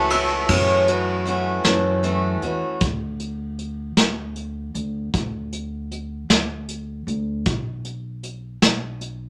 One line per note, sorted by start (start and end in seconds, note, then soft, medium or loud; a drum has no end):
0.00 0.46 F#1 medium
0.00 0.45 C#2 medium
0.00 0.46 F#2 medium
0.00 0.46 F#3 medium
0.00 0.11 A3 medium
0.00 0.10 C#4 medium
0.00 0.46 C#4 medium
0.00 0.46 E4 medium
0.00 0.46 F#4 medium
0.00 0.46 A4 medium
0.00 0.46 C#5 medium
0.00 0.47 E5 medium
0.00 0.50 E5 medium
0.00 0.11 F#5 medium
0.00 0.45 A5 medium
0.00 0.49 A5 loud
0.00 0.47 C#6 medium
0.10 0.49 E3 soft
0.10 0.49 A3 soft
0.10 0.50 C#4 medium
0.10 0.49 F#4 medium
0.10 0.49 E6 medium
0.10 ride medium
0.29 clap soft
0.49 1.61 F#2 medium
0.49 0.88 F#2 medium
0.49 0.88 C#3 medium
0.49 0.89 E3 medium
0.49 0.89 A3 medium
0.49 0.88 C#4 medium
0.49 0.87 F#4 medium
0.49 kick medium
0.49 crash medium
0.88 1.24 E3 soft
0.88 1.26 A3 medium
0.88 1.27 C#4 soft
0.88 1.27 F#4 medium
0.88 closed hi-hat medium
1.25 1.64 E3 medium
1.25 1.64 A3 medium
1.25 1.63 C#4 medium
1.25 1.63 F#4 medium
1.25 closed hi-hat medium
1.64 2.38 F#2 loud
1.64 2.05 F#2 medium
1.64 2.04 C#3 medium
1.64 2.02 E3 medium
1.64 2.03 A3 medium
1.64 2.03 C#4 medium
1.64 2.03 F#4 medium
1.64 snare medium
1.64 closed hi-hat medium
2.03 2.42 E3 medium
2.03 2.43 A3 medium
2.03 2.42 C#4 medium
2.03 2.41 F#4 medium
2.03 closed hi-hat medium
2.42 2.60 E2 medium
2.42 2.83 E3 soft
2.42 2.82 A3 soft
2.42 2.82 C#4 soft
2.42 2.81 F#4 soft
2.42 closed hi-hat medium
2.80 3.93 D2 medium
2.80 kick loud
2.80 closed hi-hat medium
3.20 closed hi-hat medium
3.59 closed hi-hat soft
3.97 4.71 D2 medium
3.97 snare medium
3.97 closed hi-hat medium
4.36 closed hi-hat medium
4.74 5.10 D2 medium
4.74 closed hi-hat medium
5.13 6.26 D2 medium
5.13 kick loud
5.13 closed hi-hat medium
5.53 closed hi-hat medium
5.91 closed hi-hat medium
6.29 7.03 D2 medium
6.29 snare medium
6.29 closed hi-hat medium
6.69 closed hi-hat medium
7.07 7.43 D2 medium
7.07 closed hi-hat medium
7.46 8.58 B1 medium
7.46 kick loud
7.46 closed hi-hat medium
7.85 closed hi-hat medium
8.23 closed hi-hat medium
8.62 9.29 B1 medium
8.62 snare medium
8.62 closed hi-hat medium
9.01 closed hi-hat medium